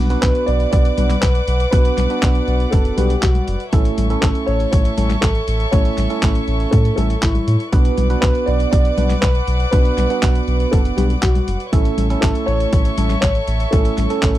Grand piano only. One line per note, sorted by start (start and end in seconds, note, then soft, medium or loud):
0.21 0.48 B4 loud
0.46 0.70 D5 loud
0.71 1.23 D5 loud
1.21 1.69 B4 loud
1.71 2.75 B4 loud
2.71 2.98 A4 medium
2.96 3.23 G4 medium
3.21 3.57 F#4 medium
4.21 4.27 A4 loud
4.46 4.70 C#5 loud
4.71 5.18 C#5 loud
5.21 5.68 A4 loud
5.71 6.75 C#5 loud
6.71 6.94 A4 medium
6.96 7.23 A4 medium
7.21 7.57 E4 medium
8.21 8.48 B4 loud
8.46 8.70 D5 loud
8.71 9.23 D5 loud
9.21 9.70 B4 loud
9.71 10.75 B4 loud
10.71 10.77 A4 medium
10.96 11.02 G4 medium
11.21 11.57 F#4 medium
12.21 12.45 A4 medium
12.46 13.19 C#5 loud
13.21 13.73 C#5 loud
13.71 14.38 A4 medium